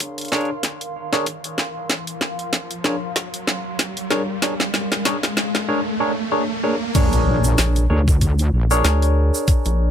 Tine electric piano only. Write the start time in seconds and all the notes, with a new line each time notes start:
Already playing: D4 G#4 A#4 C#5
0.32 D4 G#4 A#4 C#5
1.13 D4 G#4 A#4 C#5
2.85 D4 G#4 A#4 C#5
4.11 D4 G#4 A#4 C#5
4.42 D4 G#4 A#4 C#5
5.05 D4 G#4 A#4 C#5
5.69 D4 G#4 A#4 C#5
6.00 D4 G#4 A#4 C#5
6.32 D4 G#4 A#4 C#5
6.63 D4 G#4 A#4 C#5
6.95 D4 G#4 A#4 C#5
7.90 D4 G#4 A#4 C#5
8.71 D4 G#4 A#4 C#5